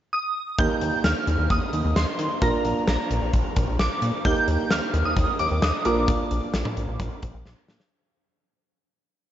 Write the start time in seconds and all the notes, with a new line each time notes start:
0.13 D#6
0.59 D#2 A#3 D#4 G4 A#4 G6, kick, closed hi-hat
0.81 D#2, closed hi-hat
1.04 D#2 F6, snare, closed hi-hat
1.27 D#2, closed hi-hat
1.39 D#2
1.50 D#2 D#6, kick, closed hi-hat
1.73 D#2, closed hi-hat
1.85 D#2
1.96 D#2 C6, snare, closed hi-hat
2.19 D#3, closed hi-hat
2.42 A#1 A#3 D4 F4 A#4 A#5, kick, closed hi-hat
2.65 A#1, closed hi-hat
2.88 A#1 A#5, snare, closed hi-hat
3.11 A#1, closed hi-hat
3.22 A#1
3.33 A#1, kick, closed hi-hat
3.56 A#1, kick, closed hi-hat
3.68 A#1
3.79 A#1 D6, snare, closed hi-hat
4.02 A#2, closed hi-hat
4.25 D#2 A#3 D#4 G4 A#4 G6, kick, closed hi-hat
4.48 D#2, closed hi-hat
4.71 D#2 F6, snare, closed hi-hat
4.94 D#2, closed hi-hat
5.05 D#2 D#6
5.17 D#2, kick, closed hi-hat
5.39 D#2 D6, closed hi-hat
5.51 D#2
5.62 D#2 D#6, snare, closed hi-hat
5.85 A#1 A#3 D4 F4 A#4 D6, closed hi-hat
6.08 kick, closed hi-hat
6.31 A#1, closed hi-hat
6.54 A#1, snare, closed hi-hat
6.65 mid tom
6.77 A#1, closed hi-hat
6.88 A#1
7.00 A#1, kick, closed hi-hat
7.22 A#1, kick, closed hi-hat
7.34 A#1
7.45 A#1, snare
7.68 A#2, snare
7.80 snare